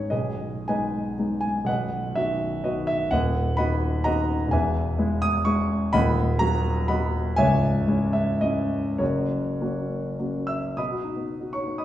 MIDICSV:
0, 0, Header, 1, 2, 480
1, 0, Start_track
1, 0, Tempo, 554529
1, 98, Time_signature, 3, 2, 24, 8
1, 583, Tempo, 493016
1, 2503, Tempo, 470219
1, 6343, Tempo, 492611
1, 7783, Tempo, 536193
1, 8263, Tempo, 589971
1, 10183, Tempo, 512383
1, 11182, End_track
2, 0, Start_track
2, 0, Title_t, "Grand piano"
2, 0, Program_c, 0, 0
2, 0, Control_c, 0, 64, 127
2, 0, Note_on_c, 0, 32, 49
2, 0, Note_on_c, 0, 44, 53
2, 0, Note_on_c, 0, 56, 37
2, 0, Note_on_c, 0, 59, 42
2, 0, Note_on_c, 0, 63, 51
2, 0, Note_on_c, 0, 68, 49
2, 0, Note_on_c, 0, 71, 62
2, 0, Note_on_c, 0, 73, 76
2, 0, Note_on_c, 0, 75, 66
2, 87, Note_off_c, 0, 75, 0
2, 87, Note_on_c, 0, 75, 81
2, 95, Note_off_c, 0, 68, 0
2, 95, Note_off_c, 0, 73, 0
2, 95, Note_on_c, 0, 68, 61
2, 97, Note_on_c, 0, 23, 53
2, 98, Note_off_c, 0, 71, 0
2, 98, Note_on_c, 0, 35, 55
2, 98, Note_on_c, 0, 71, 59
2, 113, Control_c, 0, 64, 0
2, 119, Note_off_c, 0, 32, 0
2, 120, Note_off_c, 0, 56, 0
2, 120, Note_off_c, 0, 63, 0
2, 121, Note_off_c, 0, 44, 0
2, 122, Note_off_c, 0, 59, 0
2, 243, Control_c, 0, 64, 127
2, 547, Note_off_c, 0, 68, 0
2, 549, Note_off_c, 0, 71, 0
2, 578, Note_off_c, 0, 75, 0
2, 587, Note_on_c, 0, 80, 85
2, 599, Note_on_c, 0, 56, 47
2, 599, Note_on_c, 0, 71, 66
2, 600, Note_on_c, 0, 59, 49
2, 602, Note_on_c, 0, 75, 70
2, 603, Note_on_c, 0, 63, 49
2, 1036, Note_off_c, 0, 56, 0
2, 1036, Note_off_c, 0, 59, 0
2, 1038, Note_off_c, 0, 63, 0
2, 1084, Note_on_c, 0, 56, 42
2, 1087, Note_on_c, 0, 63, 47
2, 1089, Note_on_c, 0, 59, 43
2, 1274, Note_off_c, 0, 71, 0
2, 1275, Note_off_c, 0, 75, 0
2, 1281, Note_off_c, 0, 80, 0
2, 1296, Note_on_c, 0, 80, 86
2, 1506, Note_off_c, 0, 23, 0
2, 1506, Note_off_c, 0, 35, 0
2, 1515, Note_off_c, 0, 56, 0
2, 1517, Note_off_c, 0, 63, 0
2, 1518, Note_off_c, 0, 59, 0
2, 1527, Note_on_c, 0, 35, 62
2, 1541, Note_off_c, 0, 80, 0
2, 1548, Note_on_c, 0, 78, 90
2, 1557, Note_on_c, 0, 23, 56
2, 1563, Control_c, 0, 64, 0
2, 1564, Note_on_c, 0, 75, 66
2, 1567, Note_on_c, 0, 71, 69
2, 1735, Control_c, 0, 64, 127
2, 2005, Note_off_c, 0, 75, 0
2, 2007, Note_off_c, 0, 71, 0
2, 2025, Note_on_c, 0, 76, 93
2, 2031, Note_off_c, 0, 78, 0
2, 2037, Note_on_c, 0, 51, 49
2, 2040, Note_on_c, 0, 59, 50
2, 2043, Note_on_c, 0, 66, 59
2, 2468, Note_off_c, 0, 51, 0
2, 2470, Note_off_c, 0, 59, 0
2, 2471, Note_off_c, 0, 66, 0
2, 2497, Note_on_c, 0, 75, 75
2, 2502, Note_off_c, 0, 76, 0
2, 2502, Note_on_c, 0, 71, 63
2, 2503, Note_on_c, 0, 51, 49
2, 2507, Note_on_c, 0, 66, 66
2, 2515, Note_on_c, 0, 59, 46
2, 2731, Note_off_c, 0, 71, 0
2, 2733, Note_off_c, 0, 66, 0
2, 2733, Note_on_c, 0, 76, 96
2, 2745, Note_off_c, 0, 75, 0
2, 2940, Note_off_c, 0, 35, 0
2, 2949, Note_off_c, 0, 51, 0
2, 2955, Note_off_c, 0, 23, 0
2, 2955, Note_off_c, 0, 59, 0
2, 2975, Note_on_c, 0, 78, 99
2, 2979, Note_on_c, 0, 27, 61
2, 2982, Note_off_c, 0, 76, 0
2, 2987, Note_on_c, 0, 71, 74
2, 2987, Note_on_c, 0, 75, 74
2, 2989, Note_on_c, 0, 39, 69
2, 3006, Control_c, 0, 64, 0
2, 3175, Control_c, 0, 64, 127
2, 3437, Note_off_c, 0, 71, 0
2, 3437, Note_off_c, 0, 75, 0
2, 3443, Note_off_c, 0, 78, 0
2, 3445, Note_on_c, 0, 83, 109
2, 3454, Note_on_c, 0, 51, 54
2, 3458, Note_on_c, 0, 78, 85
2, 3459, Note_on_c, 0, 75, 84
2, 3467, Note_on_c, 0, 66, 60
2, 3468, Note_on_c, 0, 59, 57
2, 3897, Note_off_c, 0, 51, 0
2, 3903, Note_off_c, 0, 59, 0
2, 3903, Note_off_c, 0, 66, 0
2, 3906, Note_off_c, 0, 75, 0
2, 3906, Note_off_c, 0, 78, 0
2, 3928, Note_on_c, 0, 82, 109
2, 3933, Note_off_c, 0, 83, 0
2, 3936, Note_on_c, 0, 75, 79
2, 3936, Note_on_c, 0, 78, 78
2, 3941, Note_on_c, 0, 51, 53
2, 3946, Note_on_c, 0, 66, 59
2, 3948, Note_on_c, 0, 59, 52
2, 4368, Note_on_c, 0, 28, 69
2, 4377, Note_off_c, 0, 27, 0
2, 4380, Note_off_c, 0, 51, 0
2, 4382, Note_off_c, 0, 39, 0
2, 4383, Note_off_c, 0, 59, 0
2, 4383, Note_off_c, 0, 66, 0
2, 4385, Note_off_c, 0, 75, 0
2, 4385, Note_off_c, 0, 78, 0
2, 4408, Note_on_c, 0, 80, 94
2, 4415, Note_off_c, 0, 82, 0
2, 4423, Note_on_c, 0, 40, 75
2, 4425, Note_on_c, 0, 76, 71
2, 4427, Note_on_c, 0, 71, 74
2, 4441, Control_c, 0, 64, 0
2, 4609, Control_c, 0, 64, 127
2, 4893, Note_on_c, 0, 56, 62
2, 4894, Note_on_c, 0, 59, 62
2, 4897, Note_on_c, 0, 64, 68
2, 5103, Note_off_c, 0, 76, 0
2, 5104, Note_off_c, 0, 71, 0
2, 5128, Note_on_c, 0, 87, 122
2, 5135, Note_off_c, 0, 80, 0
2, 5338, Note_off_c, 0, 56, 0
2, 5339, Note_off_c, 0, 59, 0
2, 5340, Note_off_c, 0, 64, 0
2, 5364, Note_on_c, 0, 85, 96
2, 5375, Note_on_c, 0, 56, 58
2, 5377, Note_off_c, 0, 87, 0
2, 5378, Note_on_c, 0, 64, 59
2, 5380, Note_on_c, 0, 59, 60
2, 5800, Note_off_c, 0, 28, 0
2, 5823, Note_off_c, 0, 56, 0
2, 5824, Note_off_c, 0, 64, 0
2, 5825, Note_off_c, 0, 59, 0
2, 5827, Note_off_c, 0, 40, 0
2, 5852, Note_on_c, 0, 83, 122
2, 5857, Note_on_c, 0, 78, 85
2, 5858, Note_off_c, 0, 85, 0
2, 5861, Note_on_c, 0, 75, 94
2, 5862, Note_on_c, 0, 39, 84
2, 5863, Note_on_c, 0, 27, 71
2, 5884, Control_c, 0, 64, 0
2, 6062, Control_c, 0, 64, 127
2, 6305, Note_off_c, 0, 78, 0
2, 6307, Note_off_c, 0, 75, 0
2, 6327, Note_on_c, 0, 82, 121
2, 6336, Note_on_c, 0, 54, 66
2, 6337, Note_off_c, 0, 83, 0
2, 6340, Note_on_c, 0, 59, 63
2, 6344, Note_on_c, 0, 66, 68
2, 6780, Note_off_c, 0, 54, 0
2, 6782, Note_off_c, 0, 59, 0
2, 6784, Note_off_c, 0, 66, 0
2, 6805, Note_on_c, 0, 83, 99
2, 6814, Note_on_c, 0, 78, 72
2, 6815, Note_off_c, 0, 82, 0
2, 6815, Note_on_c, 0, 54, 56
2, 6816, Note_on_c, 0, 59, 54
2, 6817, Note_on_c, 0, 75, 72
2, 6822, Note_on_c, 0, 66, 57
2, 7041, Note_off_c, 0, 78, 0
2, 7043, Note_off_c, 0, 75, 0
2, 7054, Note_off_c, 0, 83, 0
2, 7258, Note_off_c, 0, 54, 0
2, 7258, Note_off_c, 0, 59, 0
2, 7259, Note_off_c, 0, 39, 0
2, 7260, Note_off_c, 0, 27, 0
2, 7262, Note_off_c, 0, 66, 0
2, 7275, Note_on_c, 0, 80, 117
2, 7290, Note_on_c, 0, 73, 85
2, 7290, Note_on_c, 0, 76, 89
2, 7293, Note_on_c, 0, 37, 76
2, 7294, Note_on_c, 0, 25, 69
2, 7316, Control_c, 0, 64, 0
2, 7482, Control_c, 0, 64, 127
2, 7768, Note_on_c, 0, 56, 55
2, 7780, Note_on_c, 0, 61, 58
2, 7783, Note_on_c, 0, 64, 63
2, 7978, Note_off_c, 0, 76, 0
2, 7979, Note_off_c, 0, 73, 0
2, 8002, Note_on_c, 0, 76, 89
2, 8007, Note_off_c, 0, 80, 0
2, 8221, Note_off_c, 0, 56, 0
2, 8227, Note_off_c, 0, 61, 0
2, 8228, Note_off_c, 0, 64, 0
2, 8252, Note_on_c, 0, 75, 89
2, 8256, Note_off_c, 0, 76, 0
2, 8260, Note_on_c, 0, 56, 44
2, 8262, Note_on_c, 0, 61, 48
2, 8271, Note_on_c, 0, 64, 55
2, 8699, Note_off_c, 0, 25, 0
2, 8699, Note_off_c, 0, 37, 0
2, 8701, Note_off_c, 0, 56, 0
2, 8701, Note_off_c, 0, 61, 0
2, 8705, Note_off_c, 0, 64, 0
2, 8720, Note_on_c, 0, 73, 80
2, 8725, Note_on_c, 0, 42, 64
2, 8727, Note_on_c, 0, 66, 61
2, 8727, Note_on_c, 0, 70, 61
2, 8729, Note_off_c, 0, 75, 0
2, 8731, Note_on_c, 0, 30, 59
2, 8752, Control_c, 0, 64, 0
2, 8925, Control_c, 0, 64, 127
2, 9223, Note_off_c, 0, 66, 0
2, 9229, Note_on_c, 0, 58, 50
2, 9235, Note_on_c, 0, 66, 54
2, 9237, Note_on_c, 0, 61, 51
2, 9677, Note_off_c, 0, 58, 0
2, 9680, Note_off_c, 0, 66, 0
2, 9681, Note_off_c, 0, 61, 0
2, 9702, Note_on_c, 0, 58, 44
2, 9704, Note_on_c, 0, 61, 42
2, 9710, Note_on_c, 0, 66, 49
2, 9916, Note_off_c, 0, 70, 0
2, 9928, Note_on_c, 0, 88, 83
2, 9941, Note_on_c, 0, 76, 62
2, 9945, Note_off_c, 0, 73, 0
2, 10146, Note_off_c, 0, 42, 0
2, 10149, Note_off_c, 0, 30, 0
2, 10149, Note_off_c, 0, 58, 0
2, 10150, Note_off_c, 0, 61, 0
2, 10152, Note_off_c, 0, 66, 0
2, 10161, Note_off_c, 0, 76, 0
2, 10172, Note_off_c, 0, 88, 0
2, 10174, Note_on_c, 0, 87, 80
2, 10180, Note_on_c, 0, 47, 55
2, 10184, Note_on_c, 0, 83, 63
2, 10185, Note_on_c, 0, 75, 65
2, 10204, Control_c, 0, 64, 0
2, 10309, Note_on_c, 0, 66, 46
2, 10337, Control_c, 0, 64, 127
2, 10425, Note_on_c, 0, 63, 45
2, 10499, Note_off_c, 0, 66, 0
2, 10541, Note_on_c, 0, 59, 43
2, 10616, Note_off_c, 0, 63, 0
2, 10774, Note_on_c, 0, 66, 48
2, 10867, Note_off_c, 0, 75, 0
2, 10867, Note_off_c, 0, 83, 0
2, 10883, Note_on_c, 0, 85, 74
2, 10893, Note_on_c, 0, 73, 56
2, 10895, Note_on_c, 0, 63, 45
2, 10898, Note_off_c, 0, 87, 0
2, 10926, Note_off_c, 0, 59, 0
2, 10971, Note_off_c, 0, 66, 0
2, 11013, Note_on_c, 0, 59, 42
2, 11091, Note_off_c, 0, 63, 0
2, 11121, Note_off_c, 0, 73, 0
2, 11121, Note_on_c, 0, 87, 74
2, 11126, Note_on_c, 0, 83, 55
2, 11131, Note_on_c, 0, 75, 57
2, 11133, Note_off_c, 0, 85, 0
2, 11182, Note_off_c, 0, 47, 0
2, 11182, Note_off_c, 0, 59, 0
2, 11182, Note_off_c, 0, 75, 0
2, 11182, Note_off_c, 0, 83, 0
2, 11182, Note_off_c, 0, 87, 0
2, 11182, End_track
0, 0, End_of_file